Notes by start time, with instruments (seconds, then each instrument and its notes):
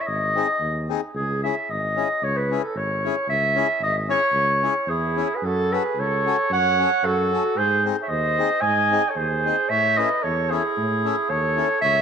0.01 clarinet E5
0.07 tuba G#1, clarinet D#5
0.36 accordion C4 D#4 G#4
0.60 tuba D#2
0.89 accordion C4 D#4 G#4
1.14 tuba C#2, clarinet G#4
1.43 accordion C#4 E4 G#4, clarinet E5
1.69 tuba G#1, clarinet D#5
1.96 accordion C#4 E4 G#4
2.22 tuba C#2, clarinet C#5
2.37 clarinet B4
2.51 accordion C#4 E4 G#4
2.63 clarinet A4
2.75 tuba G#1, clarinet C#5
3.04 accordion C#4 E4 G#4
3.28 tuba C#2, clarinet E5
3.56 accordion C#4 E4 G#4
3.80 tuba G#1, clarinet D#5
4.09 accordion C#4 E4 G#4, clarinet C#5
4.32 tuba C#2
4.63 accordion C#4 E4 G#4
4.87 tuba E2, clarinet G#4
4.92 trumpet E4
5.16 accordion C#4 E4 G#4
5.35 trumpet G#4, clarinet B4
5.42 tuba F#2, trumpet F#4, clarinet A4
5.72 accordion C#4 F#4 A4, trumpet G#4, clarinet B4
5.96 tuba C#2, clarinet C#5
6.00 trumpet A4
6.26 accordion C#4 F#4 A4
6.50 tuba F#2, trumpet C#5, clarinet F#5
6.79 accordion C#4 F#4 A4
7.03 tuba F#2, trumpet F#4, clarinet A4
7.32 accordion C#4 F#4 A4
7.56 tuba G#2, trumpet G#4, clarinet C5
7.85 accordion C4 D#4 G#4
8.02 trumpet C#5, clarinet E5
8.09 tuba D#2, trumpet C5, clarinet D#5
8.38 accordion C4 D#4 G#4
8.61 tuba G#2, trumpet D#5, clarinet G#5
8.91 accordion C4 D#4 G#4
9.09 trumpet A4, clarinet C#5
9.15 tuba D#2, trumpet G#4, clarinet C5
9.45 accordion C4 D#4 G#4
9.69 tuba A2, trumpet C#5, clarinet E5
9.97 accordion C#4 E4 A4, trumpet B4, clarinet D#5
10.23 tuba E2, trumpet A4, clarinet C#5
10.50 accordion C#4 E4 A4, trumpet E4, clarinet G#4
10.77 tuba A2
11.04 accordion C#4 E4 A4
11.29 tuba D#2, trumpet A4, clarinet C#5
11.57 accordion C#4 E4 A4
11.81 tuba C#2, trumpet C#5, clarinet E5